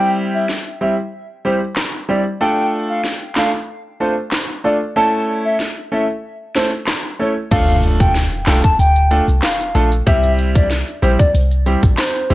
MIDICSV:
0, 0, Header, 1, 6, 480
1, 0, Start_track
1, 0, Key_signature, -1, "minor"
1, 0, Tempo, 638298
1, 1811, Time_signature, 4, 2, 24, 8
1, 9281, End_track
2, 0, Start_track
2, 0, Title_t, "Soft synth lead"
2, 0, Program_c, 0, 80
2, 0, Note_on_c, 0, 79, 91
2, 83, Note_off_c, 0, 79, 0
2, 259, Note_on_c, 0, 76, 77
2, 348, Note_off_c, 0, 76, 0
2, 611, Note_on_c, 0, 76, 74
2, 712, Note_off_c, 0, 76, 0
2, 1092, Note_on_c, 0, 72, 83
2, 1193, Note_off_c, 0, 72, 0
2, 1572, Note_on_c, 0, 74, 86
2, 1672, Note_off_c, 0, 74, 0
2, 1811, Note_on_c, 0, 79, 89
2, 2002, Note_off_c, 0, 79, 0
2, 2178, Note_on_c, 0, 77, 76
2, 2268, Note_off_c, 0, 77, 0
2, 2531, Note_on_c, 0, 77, 78
2, 2632, Note_off_c, 0, 77, 0
2, 3011, Note_on_c, 0, 72, 80
2, 3112, Note_off_c, 0, 72, 0
2, 3491, Note_on_c, 0, 74, 88
2, 3592, Note_off_c, 0, 74, 0
2, 3732, Note_on_c, 0, 81, 92
2, 3923, Note_off_c, 0, 81, 0
2, 4098, Note_on_c, 0, 76, 75
2, 4188, Note_off_c, 0, 76, 0
2, 4452, Note_on_c, 0, 76, 74
2, 4553, Note_off_c, 0, 76, 0
2, 4931, Note_on_c, 0, 72, 88
2, 5032, Note_off_c, 0, 72, 0
2, 5412, Note_on_c, 0, 73, 85
2, 5513, Note_off_c, 0, 73, 0
2, 5651, Note_on_c, 0, 77, 102
2, 5842, Note_off_c, 0, 77, 0
2, 6018, Note_on_c, 0, 79, 80
2, 6108, Note_off_c, 0, 79, 0
2, 6372, Note_on_c, 0, 79, 82
2, 6473, Note_off_c, 0, 79, 0
2, 6501, Note_on_c, 0, 81, 81
2, 6589, Note_off_c, 0, 81, 0
2, 6613, Note_on_c, 0, 79, 109
2, 6957, Note_off_c, 0, 79, 0
2, 7092, Note_on_c, 0, 77, 80
2, 7437, Note_off_c, 0, 77, 0
2, 7571, Note_on_c, 0, 76, 108
2, 7762, Note_off_c, 0, 76, 0
2, 7938, Note_on_c, 0, 74, 88
2, 8028, Note_off_c, 0, 74, 0
2, 8290, Note_on_c, 0, 72, 84
2, 8391, Note_off_c, 0, 72, 0
2, 8418, Note_on_c, 0, 74, 82
2, 8508, Note_off_c, 0, 74, 0
2, 9011, Note_on_c, 0, 72, 86
2, 9281, Note_off_c, 0, 72, 0
2, 9281, End_track
3, 0, Start_track
3, 0, Title_t, "Grand piano"
3, 0, Program_c, 1, 0
3, 0, Note_on_c, 1, 55, 89
3, 0, Note_on_c, 1, 60, 81
3, 0, Note_on_c, 1, 64, 83
3, 0, Note_on_c, 1, 67, 97
3, 334, Note_off_c, 1, 55, 0
3, 335, Note_off_c, 1, 60, 0
3, 336, Note_off_c, 1, 64, 0
3, 336, Note_off_c, 1, 67, 0
3, 609, Note_on_c, 1, 55, 73
3, 611, Note_on_c, 1, 60, 67
3, 612, Note_on_c, 1, 64, 67
3, 614, Note_on_c, 1, 67, 77
3, 712, Note_off_c, 1, 55, 0
3, 713, Note_off_c, 1, 60, 0
3, 714, Note_off_c, 1, 64, 0
3, 714, Note_off_c, 1, 67, 0
3, 1089, Note_on_c, 1, 55, 69
3, 1090, Note_on_c, 1, 60, 63
3, 1092, Note_on_c, 1, 64, 64
3, 1093, Note_on_c, 1, 67, 80
3, 1192, Note_off_c, 1, 55, 0
3, 1193, Note_off_c, 1, 60, 0
3, 1193, Note_off_c, 1, 64, 0
3, 1194, Note_off_c, 1, 67, 0
3, 1569, Note_on_c, 1, 55, 75
3, 1570, Note_on_c, 1, 60, 67
3, 1572, Note_on_c, 1, 64, 66
3, 1573, Note_on_c, 1, 67, 86
3, 1672, Note_off_c, 1, 55, 0
3, 1672, Note_off_c, 1, 60, 0
3, 1673, Note_off_c, 1, 64, 0
3, 1674, Note_off_c, 1, 67, 0
3, 1809, Note_on_c, 1, 57, 87
3, 1811, Note_on_c, 1, 62, 82
3, 1812, Note_on_c, 1, 65, 79
3, 1813, Note_on_c, 1, 69, 97
3, 2254, Note_off_c, 1, 57, 0
3, 2255, Note_off_c, 1, 62, 0
3, 2255, Note_off_c, 1, 65, 0
3, 2256, Note_off_c, 1, 69, 0
3, 2529, Note_on_c, 1, 57, 77
3, 2531, Note_on_c, 1, 62, 69
3, 2532, Note_on_c, 1, 65, 68
3, 2534, Note_on_c, 1, 69, 83
3, 2632, Note_off_c, 1, 57, 0
3, 2633, Note_off_c, 1, 62, 0
3, 2634, Note_off_c, 1, 65, 0
3, 2634, Note_off_c, 1, 69, 0
3, 3009, Note_on_c, 1, 57, 70
3, 3011, Note_on_c, 1, 62, 63
3, 3012, Note_on_c, 1, 65, 65
3, 3014, Note_on_c, 1, 69, 78
3, 3112, Note_off_c, 1, 57, 0
3, 3113, Note_off_c, 1, 62, 0
3, 3113, Note_off_c, 1, 65, 0
3, 3114, Note_off_c, 1, 69, 0
3, 3490, Note_on_c, 1, 57, 72
3, 3491, Note_on_c, 1, 62, 69
3, 3493, Note_on_c, 1, 65, 70
3, 3494, Note_on_c, 1, 69, 84
3, 3592, Note_off_c, 1, 57, 0
3, 3593, Note_off_c, 1, 62, 0
3, 3594, Note_off_c, 1, 65, 0
3, 3595, Note_off_c, 1, 69, 0
3, 3729, Note_on_c, 1, 57, 92
3, 3731, Note_on_c, 1, 61, 80
3, 3732, Note_on_c, 1, 64, 82
3, 3734, Note_on_c, 1, 69, 100
3, 4174, Note_off_c, 1, 57, 0
3, 4175, Note_off_c, 1, 61, 0
3, 4175, Note_off_c, 1, 64, 0
3, 4176, Note_off_c, 1, 69, 0
3, 4449, Note_on_c, 1, 57, 71
3, 4450, Note_on_c, 1, 61, 69
3, 4452, Note_on_c, 1, 64, 67
3, 4453, Note_on_c, 1, 69, 82
3, 4552, Note_off_c, 1, 57, 0
3, 4552, Note_off_c, 1, 61, 0
3, 4553, Note_off_c, 1, 64, 0
3, 4554, Note_off_c, 1, 69, 0
3, 4929, Note_on_c, 1, 57, 68
3, 4931, Note_on_c, 1, 61, 67
3, 4932, Note_on_c, 1, 64, 64
3, 4933, Note_on_c, 1, 69, 76
3, 5032, Note_off_c, 1, 57, 0
3, 5033, Note_off_c, 1, 61, 0
3, 5034, Note_off_c, 1, 64, 0
3, 5034, Note_off_c, 1, 69, 0
3, 5410, Note_on_c, 1, 57, 75
3, 5411, Note_on_c, 1, 61, 69
3, 5413, Note_on_c, 1, 64, 71
3, 5414, Note_on_c, 1, 69, 82
3, 5512, Note_off_c, 1, 57, 0
3, 5513, Note_off_c, 1, 61, 0
3, 5514, Note_off_c, 1, 64, 0
3, 5514, Note_off_c, 1, 69, 0
3, 5649, Note_on_c, 1, 57, 98
3, 5650, Note_on_c, 1, 62, 88
3, 5652, Note_on_c, 1, 65, 89
3, 5653, Note_on_c, 1, 69, 108
3, 6094, Note_off_c, 1, 57, 0
3, 6094, Note_off_c, 1, 62, 0
3, 6095, Note_off_c, 1, 65, 0
3, 6096, Note_off_c, 1, 69, 0
3, 6370, Note_on_c, 1, 57, 81
3, 6371, Note_on_c, 1, 62, 72
3, 6373, Note_on_c, 1, 65, 71
3, 6374, Note_on_c, 1, 69, 89
3, 6472, Note_off_c, 1, 57, 0
3, 6473, Note_off_c, 1, 62, 0
3, 6474, Note_off_c, 1, 65, 0
3, 6475, Note_off_c, 1, 69, 0
3, 6849, Note_on_c, 1, 57, 75
3, 6850, Note_on_c, 1, 62, 70
3, 6852, Note_on_c, 1, 65, 72
3, 6854, Note_on_c, 1, 69, 85
3, 6952, Note_off_c, 1, 57, 0
3, 6953, Note_off_c, 1, 62, 0
3, 6953, Note_off_c, 1, 65, 0
3, 6954, Note_off_c, 1, 69, 0
3, 7329, Note_on_c, 1, 57, 86
3, 7331, Note_on_c, 1, 62, 74
3, 7332, Note_on_c, 1, 65, 73
3, 7334, Note_on_c, 1, 69, 90
3, 7432, Note_off_c, 1, 57, 0
3, 7433, Note_off_c, 1, 62, 0
3, 7434, Note_off_c, 1, 65, 0
3, 7434, Note_off_c, 1, 69, 0
3, 7569, Note_on_c, 1, 55, 95
3, 7571, Note_on_c, 1, 60, 90
3, 7573, Note_on_c, 1, 64, 90
3, 7574, Note_on_c, 1, 67, 108
3, 8014, Note_off_c, 1, 55, 0
3, 8015, Note_off_c, 1, 60, 0
3, 8016, Note_off_c, 1, 64, 0
3, 8016, Note_off_c, 1, 67, 0
3, 8289, Note_on_c, 1, 55, 82
3, 8290, Note_on_c, 1, 60, 72
3, 8292, Note_on_c, 1, 64, 77
3, 8294, Note_on_c, 1, 67, 90
3, 8392, Note_off_c, 1, 55, 0
3, 8393, Note_off_c, 1, 60, 0
3, 8393, Note_off_c, 1, 64, 0
3, 8394, Note_off_c, 1, 67, 0
3, 8769, Note_on_c, 1, 55, 75
3, 8771, Note_on_c, 1, 60, 70
3, 8772, Note_on_c, 1, 64, 71
3, 8774, Note_on_c, 1, 67, 84
3, 8872, Note_off_c, 1, 55, 0
3, 8873, Note_off_c, 1, 60, 0
3, 8874, Note_off_c, 1, 64, 0
3, 8874, Note_off_c, 1, 67, 0
3, 9249, Note_on_c, 1, 55, 81
3, 9250, Note_on_c, 1, 60, 76
3, 9252, Note_on_c, 1, 64, 78
3, 9254, Note_on_c, 1, 67, 90
3, 9281, Note_off_c, 1, 55, 0
3, 9281, Note_off_c, 1, 60, 0
3, 9281, Note_off_c, 1, 64, 0
3, 9281, Note_off_c, 1, 67, 0
3, 9281, End_track
4, 0, Start_track
4, 0, Title_t, "808-style bass"
4, 0, Program_c, 2, 38
4, 5651, Note_on_c, 2, 38, 100
4, 6228, Note_off_c, 2, 38, 0
4, 6371, Note_on_c, 2, 36, 95
4, 6481, Note_off_c, 2, 36, 0
4, 6611, Note_on_c, 2, 38, 116
4, 6927, Note_off_c, 2, 38, 0
4, 6978, Note_on_c, 2, 36, 89
4, 7076, Note_off_c, 2, 36, 0
4, 7331, Note_on_c, 2, 34, 88
4, 7538, Note_off_c, 2, 34, 0
4, 7571, Note_on_c, 2, 36, 103
4, 8148, Note_off_c, 2, 36, 0
4, 8291, Note_on_c, 2, 34, 98
4, 8401, Note_off_c, 2, 34, 0
4, 8531, Note_on_c, 2, 36, 111
4, 8847, Note_off_c, 2, 36, 0
4, 8896, Note_on_c, 2, 34, 96
4, 8994, Note_off_c, 2, 34, 0
4, 9252, Note_on_c, 2, 36, 97
4, 9281, Note_off_c, 2, 36, 0
4, 9281, End_track
5, 0, Start_track
5, 0, Title_t, "Impact"
5, 0, Program_c, 3, 103
5, 5651, Note_on_c, 3, 60, 80
5, 7571, Note_off_c, 3, 60, 0
5, 9281, End_track
6, 0, Start_track
6, 0, Title_t, "Drums"
6, 370, Note_on_c, 9, 38, 55
6, 445, Note_off_c, 9, 38, 0
6, 1323, Note_on_c, 9, 39, 76
6, 1329, Note_on_c, 9, 37, 76
6, 1329, Note_on_c, 9, 38, 94
6, 1399, Note_off_c, 9, 39, 0
6, 1405, Note_off_c, 9, 37, 0
6, 1405, Note_off_c, 9, 38, 0
6, 2289, Note_on_c, 9, 38, 58
6, 2364, Note_off_c, 9, 38, 0
6, 2523, Note_on_c, 9, 39, 75
6, 2529, Note_on_c, 9, 38, 94
6, 2598, Note_off_c, 9, 39, 0
6, 2604, Note_off_c, 9, 38, 0
6, 3244, Note_on_c, 9, 39, 77
6, 3250, Note_on_c, 9, 37, 77
6, 3250, Note_on_c, 9, 38, 98
6, 3319, Note_off_c, 9, 39, 0
6, 3325, Note_off_c, 9, 37, 0
6, 3325, Note_off_c, 9, 38, 0
6, 4210, Note_on_c, 9, 38, 56
6, 4285, Note_off_c, 9, 38, 0
6, 4929, Note_on_c, 9, 38, 71
6, 5004, Note_off_c, 9, 38, 0
6, 5165, Note_on_c, 9, 39, 79
6, 5170, Note_on_c, 9, 37, 77
6, 5170, Note_on_c, 9, 38, 94
6, 5240, Note_off_c, 9, 39, 0
6, 5246, Note_off_c, 9, 37, 0
6, 5246, Note_off_c, 9, 38, 0
6, 5650, Note_on_c, 9, 82, 80
6, 5651, Note_on_c, 9, 36, 110
6, 5651, Note_on_c, 9, 42, 74
6, 5651, Note_on_c, 9, 49, 109
6, 5725, Note_off_c, 9, 82, 0
6, 5726, Note_off_c, 9, 42, 0
6, 5726, Note_off_c, 9, 49, 0
6, 5727, Note_off_c, 9, 36, 0
6, 5774, Note_on_c, 9, 82, 57
6, 5850, Note_off_c, 9, 82, 0
6, 5891, Note_on_c, 9, 42, 52
6, 5966, Note_off_c, 9, 42, 0
6, 6018, Note_on_c, 9, 36, 100
6, 6018, Note_on_c, 9, 82, 84
6, 6093, Note_off_c, 9, 36, 0
6, 6093, Note_off_c, 9, 82, 0
6, 6130, Note_on_c, 9, 38, 62
6, 6131, Note_on_c, 9, 42, 81
6, 6131, Note_on_c, 9, 82, 86
6, 6206, Note_off_c, 9, 38, 0
6, 6206, Note_off_c, 9, 42, 0
6, 6206, Note_off_c, 9, 82, 0
6, 6255, Note_on_c, 9, 82, 50
6, 6330, Note_off_c, 9, 82, 0
6, 6364, Note_on_c, 9, 39, 82
6, 6370, Note_on_c, 9, 38, 109
6, 6373, Note_on_c, 9, 42, 51
6, 6374, Note_on_c, 9, 82, 57
6, 6439, Note_off_c, 9, 39, 0
6, 6445, Note_off_c, 9, 38, 0
6, 6449, Note_off_c, 9, 42, 0
6, 6450, Note_off_c, 9, 82, 0
6, 6498, Note_on_c, 9, 36, 102
6, 6498, Note_on_c, 9, 82, 64
6, 6573, Note_off_c, 9, 36, 0
6, 6573, Note_off_c, 9, 82, 0
6, 6613, Note_on_c, 9, 42, 74
6, 6614, Note_on_c, 9, 82, 74
6, 6688, Note_off_c, 9, 42, 0
6, 6689, Note_off_c, 9, 82, 0
6, 6735, Note_on_c, 9, 82, 59
6, 6810, Note_off_c, 9, 82, 0
6, 6851, Note_on_c, 9, 42, 57
6, 6926, Note_off_c, 9, 42, 0
6, 6980, Note_on_c, 9, 82, 68
6, 7056, Note_off_c, 9, 82, 0
6, 7084, Note_on_c, 9, 39, 81
6, 7090, Note_on_c, 9, 37, 87
6, 7090, Note_on_c, 9, 38, 106
6, 7090, Note_on_c, 9, 42, 88
6, 7090, Note_on_c, 9, 82, 77
6, 7160, Note_off_c, 9, 39, 0
6, 7165, Note_off_c, 9, 37, 0
6, 7165, Note_off_c, 9, 38, 0
6, 7165, Note_off_c, 9, 42, 0
6, 7165, Note_off_c, 9, 82, 0
6, 7218, Note_on_c, 9, 82, 56
6, 7293, Note_off_c, 9, 82, 0
6, 7332, Note_on_c, 9, 42, 58
6, 7407, Note_off_c, 9, 42, 0
6, 7458, Note_on_c, 9, 82, 83
6, 7533, Note_off_c, 9, 82, 0
6, 7568, Note_on_c, 9, 82, 83
6, 7571, Note_on_c, 9, 36, 119
6, 7571, Note_on_c, 9, 42, 76
6, 7644, Note_off_c, 9, 82, 0
6, 7646, Note_off_c, 9, 36, 0
6, 7646, Note_off_c, 9, 42, 0
6, 7694, Note_on_c, 9, 82, 59
6, 7769, Note_off_c, 9, 82, 0
6, 7810, Note_on_c, 9, 42, 50
6, 7886, Note_off_c, 9, 42, 0
6, 7937, Note_on_c, 9, 36, 105
6, 7938, Note_on_c, 9, 82, 84
6, 8012, Note_off_c, 9, 36, 0
6, 8013, Note_off_c, 9, 82, 0
6, 8050, Note_on_c, 9, 38, 62
6, 8051, Note_on_c, 9, 42, 84
6, 8051, Note_on_c, 9, 82, 85
6, 8126, Note_off_c, 9, 38, 0
6, 8126, Note_off_c, 9, 42, 0
6, 8126, Note_off_c, 9, 82, 0
6, 8174, Note_on_c, 9, 82, 53
6, 8250, Note_off_c, 9, 82, 0
6, 8293, Note_on_c, 9, 82, 56
6, 8294, Note_on_c, 9, 42, 50
6, 8368, Note_off_c, 9, 82, 0
6, 8369, Note_off_c, 9, 42, 0
6, 8417, Note_on_c, 9, 82, 66
6, 8418, Note_on_c, 9, 36, 102
6, 8492, Note_off_c, 9, 82, 0
6, 8493, Note_off_c, 9, 36, 0
6, 8533, Note_on_c, 9, 42, 71
6, 8534, Note_on_c, 9, 82, 73
6, 8608, Note_off_c, 9, 42, 0
6, 8609, Note_off_c, 9, 82, 0
6, 8655, Note_on_c, 9, 82, 56
6, 8730, Note_off_c, 9, 82, 0
6, 8771, Note_on_c, 9, 42, 57
6, 8846, Note_off_c, 9, 42, 0
6, 8896, Note_on_c, 9, 36, 95
6, 8900, Note_on_c, 9, 82, 68
6, 8971, Note_off_c, 9, 36, 0
6, 8976, Note_off_c, 9, 82, 0
6, 9005, Note_on_c, 9, 39, 83
6, 9009, Note_on_c, 9, 82, 78
6, 9010, Note_on_c, 9, 42, 88
6, 9011, Note_on_c, 9, 37, 87
6, 9011, Note_on_c, 9, 38, 107
6, 9080, Note_off_c, 9, 39, 0
6, 9084, Note_off_c, 9, 82, 0
6, 9085, Note_off_c, 9, 42, 0
6, 9086, Note_off_c, 9, 37, 0
6, 9086, Note_off_c, 9, 38, 0
6, 9137, Note_on_c, 9, 82, 55
6, 9212, Note_off_c, 9, 82, 0
6, 9252, Note_on_c, 9, 42, 60
6, 9281, Note_off_c, 9, 42, 0
6, 9281, End_track
0, 0, End_of_file